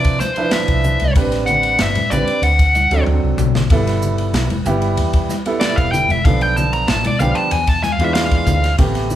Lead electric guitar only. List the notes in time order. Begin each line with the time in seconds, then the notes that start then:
Already playing: D5
0.20 C5
0.52 E5
1.46 F#5
1.82 E5
2.10 D5
2.43 F#5
5.60 D5
5.76 F5
5.92 G5
6.11 E5
6.25 F5
6.42 G5
6.56 A5
6.73 A#5
6.87 A5
7.07 D5
7.20 F5
7.35 A5
7.52 G#5
7.69 A5
7.84 G#5
7.92 F5
8.04 E5
8.14 F5